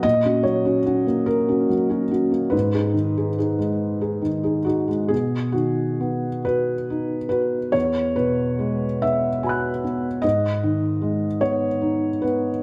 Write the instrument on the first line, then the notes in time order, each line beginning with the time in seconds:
felt piano
0.03 A#2 D#5
0.25 C#4 F#4
0.43 F#3 C#5
0.65 C#4 F#4
0.86 C#4 F#4
1.07 A#3
1.26 A#4
1.48 C#4 F#4
1.69 F#3
1.89 C#4 F#4
2.11 C#4 F#4
2.32 A#3
2.50 G#2 B4
2.74 D#4 G#4
2.94 D#3
3.17 D#4 G#4
3.38 D#4 G#4
3.58 G#3
4.01 D#4 G#4
4.22 D#3
4.43 D#4 G#4
4.65 D#4 F#4 G#4
4.88 G#3
5.08 B2 G#4
5.52 D#3 F#4
6.00 B3
6.45 F#4 B4
6.90 D#4
7.29 F#4 B4
7.72 E2 C#5
8.16 B2 B4
8.59 G#3
9.02 B3 E5
9.43 F#4 G#5 B5
9.49 F#6
9.84 B3
10.22 G#2 D#5
10.63 D#3
11.02 G#3
11.41 B3 C#5
11.81 D#4
12.22 B3 B4